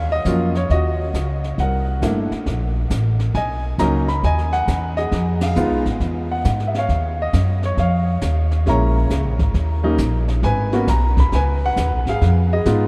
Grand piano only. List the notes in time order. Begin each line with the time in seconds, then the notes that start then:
Already playing: C#5
0.12 D#5
0.25 F#3 A#3 C#4 F4
0.57 C#5
0.71 F#4 D#5
1.60 A#4 F#5
2.02 A3 A#3 D4 E4
3.35 D#5 G#5
3.79 F#3 A#3 C#4 D#4 A#5
4.08 B5
4.25 D#5 G#5
4.53 F#5
4.97 G#4 D#5
5.43 F5
5.56 G#3 B3 D#4 F4
6.32 F#5
6.67 E5
6.78 C#5 F5
7.22 D#5
7.65 C#5
7.79 C#5 F5
8.66 G#3 A#3 C#4 E4 C#5 A#5
9.83 G3 A#3 C#4 D#4
10.44 B4 G#5
10.73 A#3 B3 C#4 F#4
10.89 A#5
11.20 B5
11.35 B4 G#5
11.66 F#5
12.09 G#4 F5
12.53 G#4 D#5
12.66 G#3 B3 D#4 F4